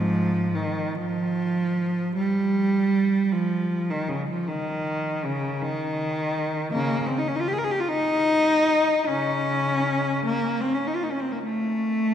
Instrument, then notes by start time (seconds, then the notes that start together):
cello
Already playing: G#2 F3
0.55 D#3
0.95 F3
2.16 G3
3.32 F3
3.90 D#3
4.08 C#3
4.30 F3
4.48 D#3
5.25 C#3
5.63 D#3
6.73 C#3 A#3
7.06 C4
7.18 D#4
7.28 C#4
7.36 D#4
7.41 F4
7.48 G4
7.53 G#4
7.59 A#4
7.64 G#4
7.71 G4
7.80 F4
7.88 D#4
9.07 C#3 C#4
10.25 A#3
10.61 C4
10.74 C#4
10.87 D#4
10.95 F4
11.03 D#4
11.11 C#4
11.20 C4
11.32 A#3
11.43 A3